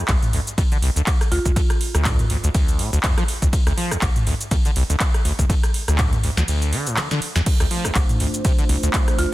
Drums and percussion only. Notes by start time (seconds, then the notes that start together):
0.08 kick, clap, closed hi-hat, ride, shaker
0.23 closed hi-hat, mid tom, shaker
0.33 open hi-hat
0.47 closed hi-hat, shaker
0.58 kick, closed hi-hat, ride, shaker
0.72 closed hi-hat, shaker
0.82 open hi-hat
0.96 closed hi-hat, shaker
1.07 kick, clap, closed hi-hat, ride, shaker
1.21 cross-stick, closed hi-hat, shaker
1.32 open hi-hat
1.46 kick, closed hi-hat, shaker
1.56 kick, closed hi-hat, ride, shaker
1.70 cross-stick, closed hi-hat, shaker
1.81 open hi-hat
1.95 cross-stick, closed hi-hat, shaker
2.05 kick, clap, closed hi-hat, mid tom, ride, shaker
2.19 closed hi-hat, mid tom, shaker
2.30 open hi-hat
2.44 closed hi-hat, shaker
2.54 kick, closed hi-hat, ride, shaker
2.68 closed hi-hat, shaker
2.79 open hi-hat
2.93 closed hi-hat, shaker
3.03 kick, clap, closed hi-hat, ride, shaker
3.18 cross-stick, closed hi-hat, shaker
3.28 open hi-hat
3.42 kick, closed hi-hat, shaker
3.53 kick, closed hi-hat, ride, shaker
3.67 cross-stick, closed hi-hat, shaker
3.78 open hi-hat
3.91 cross-stick, closed hi-hat, shaker
4.02 kick, clap, closed hi-hat, ride, shaker
4.16 closed hi-hat, mid tom, shaker
4.27 open hi-hat
4.41 closed hi-hat, shaker
4.51 kick, closed hi-hat, ride, shaker
4.65 closed hi-hat, shaker
4.76 open hi-hat
4.90 closed hi-hat, shaker
5.00 kick, clap, closed hi-hat, ride, shaker
5.14 cross-stick, closed hi-hat, shaker
5.25 open hi-hat
5.39 kick, closed hi-hat, shaker
5.50 kick, closed hi-hat, ride, shaker
5.63 cross-stick, closed hi-hat, shaker
5.74 open hi-hat
5.88 cross-stick, closed hi-hat, shaker
5.98 kick, clap, closed hi-hat, mid tom, ride, shaker
6.13 closed hi-hat, mid tom, shaker
6.23 open hi-hat
6.37 snare, closed hi-hat, shaker
6.48 closed hi-hat, ride, shaker
6.62 closed hi-hat, shaker
6.73 open hi-hat
6.87 closed hi-hat, shaker
6.97 snare, clap, closed hi-hat, ride, shaker
7.11 snare, closed hi-hat, shaker
7.22 open hi-hat
7.36 snare, closed hi-hat, shaker
7.46 kick, closed hi-hat, ride, crash, shaker
7.60 cross-stick, closed hi-hat, shaker
7.71 open hi-hat
7.85 cross-stick, closed hi-hat, shaker
7.95 kick, clap, closed hi-hat, ride, shaker
8.09 closed hi-hat, mid tom, shaker
8.20 open hi-hat
8.34 closed hi-hat, shaker
8.45 kick, closed hi-hat, ride, shaker
8.59 closed hi-hat, shaker
8.69 open hi-hat
8.83 closed hi-hat, shaker
8.93 kick, clap, closed hi-hat, ride, shaker
9.08 cross-stick, closed hi-hat, shaker
9.19 open hi-hat